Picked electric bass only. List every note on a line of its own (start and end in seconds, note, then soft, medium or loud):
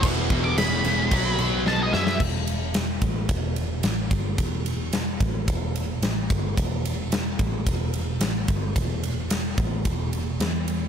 0.04 0.28 E1 loud
0.30 0.55 E1 medium
0.57 0.82 E1 loud
0.84 1.09 E1 medium
1.12 1.36 B1 loud
1.39 1.64 B1 loud
1.67 1.91 B1 loud
1.93 2.18 F#2 loud
2.20 2.98 E1 medium
3.02 3.27 A1 medium
3.29 3.80 E1 medium
3.84 4.09 A1 loud
4.11 4.36 G1 medium
4.39 5.16 E1 medium
5.21 5.46 A1 medium
5.48 5.99 E1 medium
6.02 6.28 A1 medium
6.31 6.55 G1 medium
6.58 7.35 E1 medium
7.40 7.65 A1 medium
7.67 8.17 E1 medium
8.21 8.46 A1 loud
8.49 8.74 G1 medium
8.76 9.54 E1 medium
9.58 9.83 A1 medium
9.85 10.36 E1 medium
10.40 10.88 E2 loud